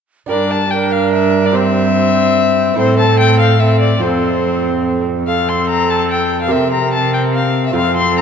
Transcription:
0.26 2.74 G2 soft
0.26 1.49 D4 soft
0.26 1.49 G4 soft
0.26 1.50 A#4 soft
0.26 0.52 D5 medium
0.31 2.74 G2 medium
0.31 0.69 D4 medium
0.31 0.69 A#4 medium
0.51 0.72 A5 medium
0.71 1.56 D4 medium
0.71 1.56 A#4 medium
0.71 0.93 G5 medium
0.92 1.13 F5 medium
1.13 1.47 E5 medium
1.46 1.56 D5 medium
1.51 2.73 C4 soft
1.51 2.78 C4 medium
1.51 2.73 G4 soft
1.51 2.74 C5 soft
1.51 2.77 C5 medium
1.51 2.78 E5 loud
2.74 3.98 A2 medium
2.74 3.96 C4 soft
2.74 3.97 E4 soft
2.74 3.97 A4 medium
2.78 3.99 A2 medium
2.78 3.59 C4 medium
2.78 3.59 A4 medium
2.78 2.98 C5 medium
2.99 3.19 A5 medium
3.20 3.39 G5 medium
3.39 3.62 F5 medium
3.60 4.01 C4 medium
3.60 4.01 A4 medium
3.60 3.80 E5 medium
3.81 4.03 D5 medium
3.98 6.53 F2 medium
3.98 6.45 C4 soft
3.98 5.04 C4 medium
3.98 6.46 F4 soft
3.98 6.46 A4 soft
3.98 5.04 A4 medium
3.98 5.06 C5 medium
4.02 6.47 F2 soft
5.26 6.47 C4 medium
5.26 6.52 A4 medium
5.26 5.50 F5 medium
5.49 5.69 C6 medium
5.69 5.91 A#5 medium
5.90 6.10 A5 medium
6.11 6.40 G5 medium
6.42 6.53 F5 medium
6.47 7.71 C3 soft
6.47 7.69 C4 soft
6.47 7.70 G4 soft
6.47 7.70 A#4 soft
6.47 7.76 A#4 medium
6.51 7.74 C3 medium
6.51 7.72 C4 medium
6.51 6.72 E5 medium
6.72 6.92 A#5 medium
6.93 7.13 A5 medium
7.14 7.22 G5 medium
7.34 7.64 F5 medium
7.66 7.75 E5 medium
7.71 8.22 C4 medium
7.71 8.22 F4 soft
7.71 8.22 A4 medium
7.75 8.22 F2 medium
7.75 7.95 F5 medium
7.97 8.16 C6 medium
8.17 8.22 A#5 loud

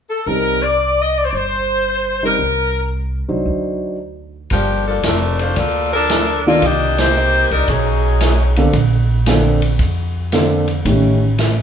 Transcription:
0.10 0.26 A4 medium
0.26 1.29 C2 medium
0.26 0.60 G3 soft
0.26 0.60 C4 soft
0.26 0.59 D#4 soft
0.26 0.62 A#4 medium
0.26 0.60 A#4 soft
0.63 1.02 D5 medium
1.02 1.15 D#5 medium
1.17 1.22 D5 medium
1.24 1.29 C5 medium
1.29 2.35 G1 medium
1.29 1.34 D5 medium
1.35 2.23 C5 medium
2.23 2.38 G3 medium
2.23 2.38 C4 soft
2.23 2.38 D#4 soft
2.23 2.38 G4 medium
2.23 2.90 A#4 medium
2.39 3.24 C2 medium
3.28 3.45 C2 medium
3.28 3.95 F#3 soft
3.28 3.95 D4 soft
3.28 3.95 D#4 soft
3.28 3.95 C5 medium
3.46 4.48 D2 medium
4.50 5.00 G1 medium
4.50 4.85 F3 medium
4.50 4.85 A#3 medium
4.50 4.85 D4 medium
4.50 4.85 G4 medium
4.50 kick soft
4.50 ride medium
4.87 5.03 F3 medium
4.87 5.03 A#3 medium
4.87 5.03 D4 medium
4.87 5.03 A4 medium
5.03 5.54 F1 medium
5.03 5.38 F3 medium
5.03 5.38 A3 medium
5.03 5.39 D4 medium
5.03 5.38 A#4 medium
5.03 snare medium
5.03 hi-hat pedal medium
5.03 ride medium
5.39 5.57 A3 medium
5.39 5.57 D4 medium
5.39 5.56 F4 medium
5.39 5.57 C5 medium
5.39 ride soft
5.56 6.59 D2 medium
5.56 5.93 A#3 medium
5.56 5.93 F4 medium
5.56 5.92 A4 medium
5.56 5.93 D5 medium
5.56 kick soft
5.56 ride medium
5.93 6.42 F3 medium
5.93 6.42 D4 medium
5.93 6.43 A4 medium
5.93 6.42 A#4 medium
6.10 snare medium
6.10 hi-hat pedal soft
6.10 ride medium
6.46 6.61 D#3 medium
6.46 6.62 A#3 soft
6.46 6.64 A#3 medium
6.46 6.62 D4 medium
6.46 6.62 F4 medium
6.46 6.64 F4 medium
6.46 6.64 A4 medium
6.46 6.64 D5 medium
6.62 7.47 C2 medium
6.62 6.98 A#3 medium
6.62 7.00 D4 medium
6.62 6.98 G4 medium
6.62 7.00 D#5 medium
6.62 kick soft
6.62 ride medium
6.98 7.52 A#3 medium
6.98 7.51 D#4 medium
6.98 7.52 G4 medium
6.98 7.52 C5 loud
6.98 snare medium
6.98 ride medium
7.16 hi-hat pedal medium
7.51 7.67 C2 medium
7.51 7.68 G3 medium
7.51 7.68 D4 medium
7.51 7.68 D#4 medium
7.51 7.68 A#4 medium
7.51 ride soft
7.68 8.70 B1 medium
7.68 8.58 F#3 medium
7.68 8.58 C#4 medium
7.68 8.58 D#4 medium
7.68 8.58 G#4 medium
7.68 kick soft
7.68 ride medium
8.21 snare medium
8.21 hi-hat pedal medium
8.21 ride medium
8.56 8.73 D3 medium
8.56 8.73 A#3 soft
8.56 8.73 C4 medium
8.56 8.73 A4 medium
8.56 ride soft
8.73 9.75 A#1 medium
8.73 kick soft
8.73 ride medium
9.26 9.60 D3 medium
9.26 9.60 A#3 soft
9.26 9.60 C4 soft
9.26 9.60 A4 medium
9.26 snare medium
9.26 hi-hat pedal medium
9.26 ride medium
9.62 ride soft
9.79 10.81 F2 medium
9.79 kick soft
9.79 ride soft
10.32 10.65 D3 medium
10.32 10.65 A#3 soft
10.32 10.65 C4 soft
10.32 10.65 A4 medium
10.32 snare medium
10.32 hi-hat pedal medium
10.32 ride medium
10.68 ride soft
10.85 11.62 A1 medium
10.85 11.18 D#3 soft
10.85 11.18 A3 soft
10.85 11.18 C#4 soft
10.85 11.18 G4 medium
10.85 kick soft
10.85 ride medium
11.38 snare medium
11.38 hi-hat pedal medium
11.38 ride medium

